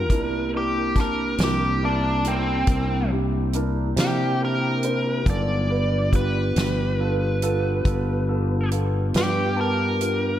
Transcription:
Already playing: A#4
0.10 C2 A#3 C4 D4 E4 G4 A#4, kick, closed hi-hat
0.53 D4 E4 G4 A#4
0.96 D4 E4 A5, kick, snare, closed hi-hat
1.01 A#4
1.38 C2 D4 E4 A#4, snare, closed hi-hat
1.44 G4
1.83 D4 E4 A#4
2.24 C4 D4 E4 A#4, closed hi-hat
2.67 C2 D4 E4 A#4, kick, closed hi-hat
3.12 D4 E4 G4
3.53 D4 E4 A#4, closed hi-hat
3.97 C3 D4 E4 G4 A#4, snare, closed hi-hat
4.41 D4 E4 A#4
4.83 D4 E4 C5, closed hi-hat
5.26 G1 F#3 B3 D#4 F4 A4 G#5, kick, closed hi-hat
5.30 D5
5.70 B3 D4 F4 G4 B4
6.12 B3 F4 G4 B4, kick, closed hi-hat
6.56 G1 B3 F4 G4, snare, closed hi-hat
7.00 B3 F4 A4
7.42 B3 F4 A4, closed hi-hat
7.85 G1 B3 F4 A4, kick, closed hi-hat
8.28 B3 F4 A4
8.71 B3 F4 A4, closed hi-hat
9.14 G2 B3 F4 G4 B4, snare, closed hi-hat
9.56 B3 F4 A5
9.61 A#4
10.00 B3 F4 G4, closed hi-hat

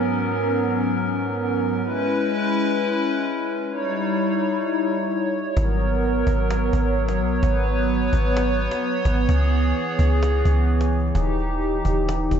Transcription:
Already playing: G#2 F#3 B3 C#4 A#4
1.85 G#3 C#4 E4 B4
3.71 G3 D#4 E4 C#5
5.57 G#1 F#3 B3 A#4, cajon bass
5.80 cajon slap
6.03 cajon slap
6.27 G#1, cajon bass
6.50 cajon slap
6.73 G#1, cajon bass
6.96 cajon slap
7.08 cajon slap
7.19 B1, cajon slap
7.27 cajon slap
7.35 cajon slap
7.43 G#1 B4, cajon bass
7.66 cajon slap
7.89 cajon slap
8.13 G#1, cajon bass
8.37 cajon slap
8.59 cajon slap
8.71 cajon slap
8.82 cajon slap
9.05 G#1, cajon bass
9.13 cajon slap
9.21 cajon slap
9.29 C#2 E3 G#4, cajon bass
9.52 cajon slap
9.75 cajon slap
9.99 C#2, cajon bass
10.23 cajon slap
10.45 C#2, cajon bass
10.68 cajon slap
10.81 cajon slap
10.92 cajon slap
10.99 cajon slap
11.07 cajon slap
11.15 D#1 D#4 G4, cajon bass
11.38 cajon slap
11.61 cajon slap
11.85 D#1, cajon bass
12.09 cajon slap
12.31 D#1, cajon bass

